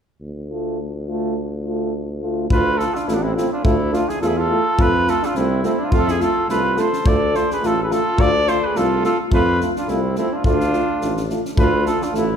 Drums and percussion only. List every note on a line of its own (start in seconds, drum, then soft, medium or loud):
2.50 kick medium
2.79 snare soft
2.95 snare soft
3.08 snare soft
3.38 snare soft
3.65 kick medium
3.94 snare soft
4.09 snare soft
4.22 snare soft
4.79 kick medium
5.07 snare soft
5.23 snare soft
5.35 snare soft
5.63 snare soft
5.92 kick medium
6.08 snare soft
6.20 snare soft
6.49 snare soft
6.77 snare soft
6.93 snare soft
7.06 kick loud
7.35 snare soft
7.51 snare soft
7.63 snare soft
7.91 snare soft
8.18 kick medium
8.47 snare soft
8.75 snare soft
9.04 snare soft
9.32 kick loud
9.60 snare soft
9.76 snare soft
9.88 snare soft
10.16 snare soft
10.44 kick medium
10.60 snare soft
10.73 snare soft
11.01 snare soft
11.17 snare soft
11.30 snare soft
11.45 snare soft
11.57 kick loud
11.86 snare soft
12.02 snare soft
12.14 snare soft